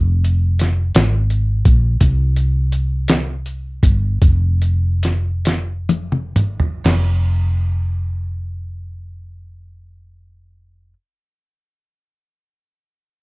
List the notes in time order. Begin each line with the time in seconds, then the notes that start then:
Already playing: F1
0.24 closed hi-hat
0.59 snare, closed hi-hat
0.95 G#1, snare, closed hi-hat
1.30 closed hi-hat
1.65 A#1, kick, closed hi-hat
2.01 C2, kick, closed hi-hat
2.36 closed hi-hat
2.72 closed hi-hat
3.08 snare, closed hi-hat
3.46 closed hi-hat
3.83 G1, kick, closed hi-hat
4.22 F1, kick, closed hi-hat
4.62 closed hi-hat
5.03 snare, closed hi-hat
5.45 snare, closed hi-hat
5.89 closed hi-hat, high tom
6.12 mid tom
6.36 G1, closed hi-hat, mid tom
6.60 floor tom
6.84 F1, snare, crash